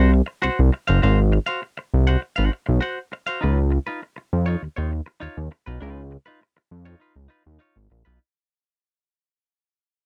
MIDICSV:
0, 0, Header, 1, 4, 480
1, 0, Start_track
1, 0, Tempo, 598802
1, 823, Time_signature, 4, 2, 24, 8
1, 8058, End_track
2, 0, Start_track
2, 0, Title_t, "Clean electric guitar"
2, 0, Program_c, 0, 27
2, 0, Note_on_c, 0, 66, 68
2, 0, Note_on_c, 0, 72, 66
2, 0, Note_on_c, 0, 78, 73
2, 87, Note_off_c, 0, 66, 0
2, 97, Note_off_c, 0, 72, 0
2, 106, Note_off_c, 0, 78, 0
2, 337, Note_on_c, 0, 66, 84
2, 344, Note_on_c, 0, 72, 86
2, 350, Note_on_c, 0, 78, 84
2, 469, Note_off_c, 0, 66, 0
2, 472, Note_off_c, 0, 72, 0
2, 475, Note_off_c, 0, 78, 0
2, 701, Note_on_c, 0, 77, 63
2, 706, Note_on_c, 0, 72, 54
2, 715, Note_on_c, 0, 66, 48
2, 803, Note_off_c, 0, 77, 0
2, 805, Note_off_c, 0, 72, 0
2, 810, Note_off_c, 0, 66, 0
2, 818, Note_on_c, 0, 66, 85
2, 825, Note_on_c, 0, 72, 93
2, 828, Note_on_c, 0, 77, 93
2, 949, Note_off_c, 0, 66, 0
2, 953, Note_off_c, 0, 72, 0
2, 954, Note_off_c, 0, 77, 0
2, 1174, Note_on_c, 0, 77, 60
2, 1183, Note_on_c, 0, 72, 54
2, 1191, Note_on_c, 0, 66, 50
2, 1279, Note_off_c, 0, 77, 0
2, 1284, Note_off_c, 0, 72, 0
2, 1288, Note_off_c, 0, 66, 0
2, 1661, Note_on_c, 0, 78, 89
2, 1669, Note_on_c, 0, 72, 73
2, 1675, Note_on_c, 0, 66, 70
2, 1767, Note_off_c, 0, 66, 0
2, 1772, Note_off_c, 0, 72, 0
2, 1779, Note_off_c, 0, 78, 0
2, 1891, Note_on_c, 0, 78, 67
2, 1904, Note_on_c, 0, 72, 62
2, 1907, Note_on_c, 0, 66, 61
2, 2010, Note_off_c, 0, 66, 0
2, 2012, Note_off_c, 0, 72, 0
2, 2027, Note_off_c, 0, 78, 0
2, 2250, Note_on_c, 0, 66, 79
2, 2260, Note_on_c, 0, 72, 87
2, 2264, Note_on_c, 0, 78, 90
2, 2385, Note_off_c, 0, 66, 0
2, 2390, Note_off_c, 0, 72, 0
2, 2392, Note_off_c, 0, 78, 0
2, 2618, Note_on_c, 0, 77, 66
2, 2626, Note_on_c, 0, 72, 56
2, 2635, Note_on_c, 0, 66, 52
2, 2721, Note_off_c, 0, 77, 0
2, 2725, Note_off_c, 0, 72, 0
2, 2729, Note_off_c, 0, 66, 0
2, 2732, Note_on_c, 0, 63, 95
2, 2741, Note_on_c, 0, 65, 91
2, 2750, Note_on_c, 0, 71, 102
2, 2866, Note_off_c, 0, 63, 0
2, 2870, Note_off_c, 0, 65, 0
2, 2875, Note_off_c, 0, 71, 0
2, 3099, Note_on_c, 0, 71, 64
2, 3106, Note_on_c, 0, 65, 57
2, 3113, Note_on_c, 0, 63, 49
2, 3201, Note_off_c, 0, 71, 0
2, 3205, Note_off_c, 0, 65, 0
2, 3208, Note_off_c, 0, 63, 0
2, 3575, Note_on_c, 0, 73, 90
2, 3587, Note_on_c, 0, 65, 78
2, 3591, Note_on_c, 0, 63, 62
2, 3698, Note_off_c, 0, 63, 0
2, 3704, Note_off_c, 0, 65, 0
2, 3707, Note_off_c, 0, 73, 0
2, 3819, Note_on_c, 0, 73, 74
2, 3826, Note_on_c, 0, 65, 67
2, 3836, Note_on_c, 0, 63, 69
2, 3934, Note_off_c, 0, 63, 0
2, 3936, Note_off_c, 0, 65, 0
2, 3949, Note_off_c, 0, 73, 0
2, 4171, Note_on_c, 0, 63, 78
2, 4180, Note_on_c, 0, 65, 93
2, 4188, Note_on_c, 0, 73, 92
2, 4305, Note_off_c, 0, 63, 0
2, 4310, Note_off_c, 0, 65, 0
2, 4314, Note_off_c, 0, 73, 0
2, 4540, Note_on_c, 0, 71, 51
2, 4548, Note_on_c, 0, 65, 52
2, 4555, Note_on_c, 0, 63, 44
2, 4642, Note_off_c, 0, 71, 0
2, 4644, Note_off_c, 0, 63, 0
2, 4646, Note_off_c, 0, 65, 0
2, 4654, Note_on_c, 0, 63, 97
2, 4663, Note_on_c, 0, 65, 103
2, 4668, Note_on_c, 0, 71, 107
2, 4818, Note_off_c, 0, 63, 0
2, 4823, Note_off_c, 0, 65, 0
2, 4825, Note_off_c, 0, 71, 0
2, 5016, Note_on_c, 0, 71, 60
2, 5025, Note_on_c, 0, 65, 53
2, 5033, Note_on_c, 0, 63, 52
2, 5120, Note_off_c, 0, 71, 0
2, 5124, Note_off_c, 0, 65, 0
2, 5128, Note_off_c, 0, 63, 0
2, 5494, Note_on_c, 0, 73, 83
2, 5500, Note_on_c, 0, 65, 74
2, 5510, Note_on_c, 0, 63, 70
2, 5599, Note_off_c, 0, 63, 0
2, 5608, Note_on_c, 0, 63, 77
2, 5612, Note_off_c, 0, 65, 0
2, 5620, Note_off_c, 0, 73, 0
2, 5621, Note_on_c, 0, 65, 87
2, 5623, Note_on_c, 0, 71, 86
2, 5721, Note_off_c, 0, 71, 0
2, 5729, Note_off_c, 0, 65, 0
2, 5745, Note_off_c, 0, 63, 0
2, 5839, Note_on_c, 0, 63, 72
2, 5849, Note_on_c, 0, 65, 65
2, 5854, Note_on_c, 0, 71, 80
2, 5952, Note_off_c, 0, 63, 0
2, 5956, Note_off_c, 0, 71, 0
2, 5957, Note_off_c, 0, 65, 0
2, 6084, Note_on_c, 0, 63, 85
2, 6092, Note_on_c, 0, 65, 90
2, 6101, Note_on_c, 0, 73, 91
2, 6223, Note_off_c, 0, 63, 0
2, 6227, Note_off_c, 0, 65, 0
2, 6231, Note_off_c, 0, 73, 0
2, 6453, Note_on_c, 0, 71, 70
2, 6459, Note_on_c, 0, 65, 55
2, 6465, Note_on_c, 0, 63, 50
2, 6559, Note_off_c, 0, 71, 0
2, 6563, Note_off_c, 0, 65, 0
2, 6565, Note_off_c, 0, 63, 0
2, 8058, End_track
3, 0, Start_track
3, 0, Title_t, "Analog synth bass"
3, 0, Program_c, 1, 38
3, 0, Note_on_c, 1, 36, 77
3, 173, Note_off_c, 1, 36, 0
3, 353, Note_on_c, 1, 36, 54
3, 398, Note_off_c, 1, 36, 0
3, 474, Note_on_c, 1, 36, 98
3, 565, Note_off_c, 1, 36, 0
3, 714, Note_on_c, 1, 30, 97
3, 805, Note_off_c, 1, 30, 0
3, 829, Note_on_c, 1, 32, 109
3, 1111, Note_off_c, 1, 32, 0
3, 1552, Note_on_c, 1, 36, 93
3, 1737, Note_off_c, 1, 36, 0
3, 1911, Note_on_c, 1, 32, 75
3, 2002, Note_off_c, 1, 32, 0
3, 2153, Note_on_c, 1, 35, 98
3, 2243, Note_off_c, 1, 35, 0
3, 2755, Note_on_c, 1, 37, 120
3, 3034, Note_off_c, 1, 37, 0
3, 3470, Note_on_c, 1, 41, 91
3, 3656, Note_off_c, 1, 41, 0
3, 3705, Note_on_c, 1, 39, 46
3, 3752, Note_off_c, 1, 39, 0
3, 3831, Note_on_c, 1, 39, 88
3, 4017, Note_off_c, 1, 39, 0
3, 4186, Note_on_c, 1, 39, 51
3, 4233, Note_off_c, 1, 39, 0
3, 4307, Note_on_c, 1, 39, 74
3, 4400, Note_off_c, 1, 39, 0
3, 4548, Note_on_c, 1, 35, 98
3, 4641, Note_off_c, 1, 35, 0
3, 4662, Note_on_c, 1, 37, 116
3, 4947, Note_off_c, 1, 37, 0
3, 5381, Note_on_c, 1, 41, 104
3, 5572, Note_off_c, 1, 41, 0
3, 5737, Note_on_c, 1, 37, 81
3, 5834, Note_off_c, 1, 37, 0
3, 5983, Note_on_c, 1, 39, 103
3, 6078, Note_off_c, 1, 39, 0
3, 6221, Note_on_c, 1, 32, 94
3, 6317, Note_off_c, 1, 32, 0
3, 6341, Note_on_c, 1, 34, 85
3, 6437, Note_off_c, 1, 34, 0
3, 6467, Note_on_c, 1, 35, 101
3, 6561, Note_off_c, 1, 35, 0
3, 8058, End_track
4, 0, Start_track
4, 0, Title_t, "Muted clean electric guitar strokes"
4, 97, Note_on_c, 9, 29, 37
4, 177, Note_off_c, 9, 29, 0
4, 212, Note_on_c, 9, 29, 38
4, 292, Note_off_c, 9, 29, 0
4, 581, Note_on_c, 9, 29, 48
4, 661, Note_off_c, 9, 29, 0
4, 1060, Note_on_c, 9, 29, 49
4, 1140, Note_off_c, 9, 29, 0
4, 1299, Note_on_c, 9, 29, 40
4, 1379, Note_off_c, 9, 29, 0
4, 1423, Note_on_c, 9, 29, 49
4, 1503, Note_off_c, 9, 29, 0
4, 1777, Note_on_c, 9, 29, 38
4, 1857, Note_off_c, 9, 29, 0
4, 2019, Note_on_c, 9, 29, 40
4, 2099, Note_off_c, 9, 29, 0
4, 2135, Note_on_c, 9, 29, 40
4, 2215, Note_off_c, 9, 29, 0
4, 2500, Note_on_c, 9, 29, 42
4, 2580, Note_off_c, 9, 29, 0
4, 2970, Note_on_c, 9, 29, 51
4, 3050, Note_off_c, 9, 29, 0
4, 3226, Note_on_c, 9, 29, 36
4, 3306, Note_off_c, 9, 29, 0
4, 3338, Note_on_c, 9, 29, 45
4, 3418, Note_off_c, 9, 29, 0
4, 3708, Note_on_c, 9, 29, 37
4, 3788, Note_off_c, 9, 29, 0
4, 3944, Note_on_c, 9, 29, 49
4, 4024, Note_off_c, 9, 29, 0
4, 4059, Note_on_c, 9, 29, 57
4, 4139, Note_off_c, 9, 29, 0
4, 4419, Note_on_c, 9, 29, 44
4, 4499, Note_off_c, 9, 29, 0
4, 4899, Note_on_c, 9, 29, 45
4, 4979, Note_off_c, 9, 29, 0
4, 5141, Note_on_c, 9, 29, 42
4, 5221, Note_off_c, 9, 29, 0
4, 5264, Note_on_c, 9, 29, 51
4, 5344, Note_off_c, 9, 29, 0
4, 5731, Note_on_c, 9, 29, 47
4, 5811, Note_off_c, 9, 29, 0
4, 6335, Note_on_c, 9, 29, 40
4, 6415, Note_off_c, 9, 29, 0
4, 8058, End_track
0, 0, End_of_file